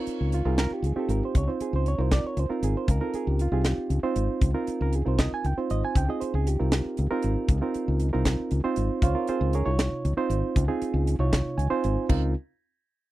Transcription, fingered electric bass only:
0.07 muted fingered electric bass stroke soft
0.21 0.43 C#2 medium
0.45 0.68 C2 medium
0.71 muted fingered electric bass stroke soft
0.82 0.94 C#2 medium
0.96 muted fingered electric bass stroke soft
1.09 1.20 G#1 medium
1.35 1.47 C#2 loud
1.61 muted fingered electric bass stroke soft
1.73 1.96 C#2 medium
1.99 2.21 C2 medium
2.24 muted fingered electric bass stroke soft
2.37 2.48 C#2 medium
2.50 muted fingered electric bass stroke soft
2.62 2.74 G#1 medium
2.88 3.00 C#2 loud
3.14 muted fingered electric bass stroke soft
3.27 3.50 C#2 medium
3.52 3.75 C2 medium
3.90 4.02 C#2 medium
4.03 muted fingered electric bass stroke soft
4.16 4.27 G#1 medium
4.42 4.53 C#2 loud
4.68 muted fingered electric bass stroke soft
4.81 5.03 C#2 medium
5.06 5.29 C2 medium
5.32 muted fingered electric bass stroke soft
5.44 5.56 C#2 medium
5.57 muted fingered electric bass stroke soft
5.71 5.82 G#1 medium
5.96 6.07 C#2 loud
6.22 muted fingered electric bass stroke soft
6.34 6.56 C#2 medium
6.60 6.83 C2 medium
6.85 muted fingered electric bass stroke soft
6.99 7.10 C#2 medium
7.11 muted fingered electric bass stroke soft
7.24 7.35 G#1 medium
7.49 7.60 C#2 loud
7.75 muted fingered electric bass stroke soft
7.88 8.10 C#2 medium
8.14 8.36 C2 medium
8.51 8.63 C#2 medium
8.77 8.88 G#1 medium
9.03 9.14 C#2 loud
9.29 muted fingered electric bass stroke soft
9.41 9.63 C#2 medium
9.66 9.89 C2 medium
9.92 muted fingered electric bass stroke soft
10.05 10.16 C#2 medium
10.17 muted fingered electric bass stroke soft
10.30 10.41 G#1 medium
10.56 10.67 C#2 loud
10.82 muted fingered electric bass stroke soft
10.94 11.17 C#2 medium
11.19 11.42 C2 medium
11.45 muted fingered electric bass stroke soft
11.58 11.69 C#2 medium
11.84 11.96 G#1 medium
12.10 12.34 C#2 medium

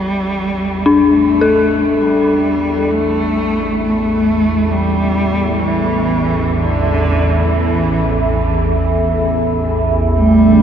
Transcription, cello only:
0.00 1.09 G3 loud
1.10 2.02 A3 medium
2.01 2.93 G3 medium
2.92 3.81 A3 loud
3.84 4.73 A3 medium
4.72 5.64 G3 medium
5.62 6.55 E3 medium
6.54 7.46 D3 medium
7.44 8.35 E3 medium
10.18 10.62 G3 loud

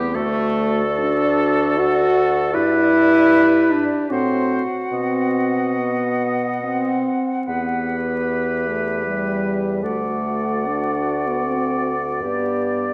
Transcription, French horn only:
0.00 0.15 B3 medium
0.15 0.82 A3 loud
0.99 1.79 D4 loud
1.78 2.54 F#4 loud
2.54 3.73 E4 loud
3.72 4.12 D4 loud
4.10 4.63 C4 loud
4.93 5.81 C4 medium
5.79 6.63 B3 medium
6.64 7.49 C4 loud
7.48 8.69 B3 medium
8.68 9.06 A3 medium
9.07 9.85 G3 medium
9.83 10.69 A3 medium
10.67 11.29 D4 medium
11.27 11.47 B3 medium
11.46 11.95 C4 loud
12.23 12.94 B3 medium

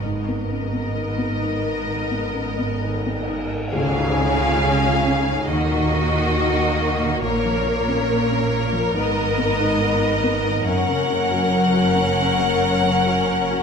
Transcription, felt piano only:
0.05 1.84 G#2 soft
0.28 0.64 B3 soft
0.51 0.73 C#4 soft
0.73 1.09 B3 soft
0.95 1.32 D#3 soft
1.18 1.54 B3 soft
1.41 1.78 D#4 soft
1.64 2.01 A#4 soft
1.87 2.25 D#3 soft
2.11 2.48 B3 soft
2.34 2.57 C#4 soft
2.59 2.95 B3 soft
2.82 3.19 D#3 soft
3.06 3.43 B3 soft
3.29 3.65 D#4 soft
3.52 3.74 A#4 soft
3.75 5.45 C#2 medium
3.97 4.32 G#2 medium
4.20 4.55 C#4 medium
4.41 4.76 F4 medium
4.64 4.98 G#4 medium
4.85 5.19 F4 medium
5.07 5.41 C#4 medium
5.29 5.50 G#2 soft
5.50 7.20 D#2 medium
5.71 6.05 A#2 soft
5.92 6.27 A#3 medium
6.14 6.49 D#4 medium
6.35 6.70 F#4 medium
6.57 6.92 D#4 medium
6.79 7.14 A#3 medium
7.00 7.21 A#2 soft
7.23 8.89 A#2 medium
7.45 7.79 F3 medium
7.66 8.00 A#3 medium
7.88 8.21 C#4 medium
8.09 8.42 A#4 medium
8.31 8.64 C#4 medium
8.51 8.85 A#3 medium
8.72 8.94 F3 medium
8.94 10.60 G#2 medium
9.17 9.50 D#3 soft
9.38 9.71 B3 medium
9.60 9.93 D#4 medium
9.81 10.14 A#4 medium
10.02 10.35 D#4 medium
10.23 10.56 B3 medium
10.45 10.65 D#3 medium
10.66 12.33 F#2 medium
10.88 11.21 C#3 medium
11.09 11.42 C#4 medium
11.31 11.63 F#4 medium
11.51 11.85 A#4 medium
11.73 12.06 F#4 medium
11.94 12.28 C#4 medium
12.16 12.50 C#3 soft
12.38 13.63 F#2 medium
12.59 12.95 C#4 soft
12.82 13.18 C#3 soft
13.06 13.41 F#4 soft
13.28 13.63 A#4 soft
13.51 13.63 F#4 soft

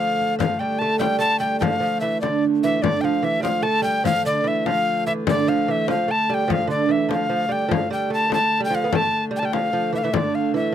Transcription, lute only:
0.00 0.38 F3 medium
0.39 0.60 F3 medium
0.60 0.79 G3 medium
0.81 1.02 A3 medium
0.99 1.21 G3 medium
1.19 1.41 A3 medium
1.40 1.60 G3 medium
1.61 1.79 F3 medium
1.80 2.02 F3 medium
2.02 2.23 E3 medium
2.23 2.64 D3 medium
2.64 2.82 E3 medium
2.83 3.04 D3 medium
3.03 3.24 F3 medium
3.23 3.39 E3 medium
3.40 3.65 F3 medium
3.40 3.45 G3 medium
3.63 3.85 A3 medium
3.82 4.04 G3 medium
4.04 4.26 F3 medium
4.25 4.44 D3 medium
4.44 4.66 E3 medium
4.66 5.08 F3 medium
5.07 5.27 E3 medium
5.28 5.48 D3 medium
5.47 5.68 F3 medium
5.68 5.89 E3 medium
5.88 6.09 F3 medium
6.08 6.29 A3 medium
6.30 6.48 G3 medium
6.48 6.69 F3 medium
6.67 6.88 D3 medium
6.89 7.10 E3 medium
7.09 7.28 F3 medium
7.29 7.48 F3 medium
7.49 7.68 G3 medium
7.69 7.90 F3 medium
7.91 8.10 G3 medium
8.10 8.29 A3 medium
8.30 8.62 A3 medium
8.60 8.70 G3 medium
8.70 8.85 F3 medium
8.84 8.92 B3 medium
8.93 9.21 A3 medium
9.31 9.41 G3 medium
9.43 9.53 G3 medium
9.54 9.72 F3 medium
9.73 9.94 F3 medium
9.93 10.02 E3 medium
10.04 10.13 E3 medium
10.13 10.54 D3 medium
10.54 10.75 E3 medium

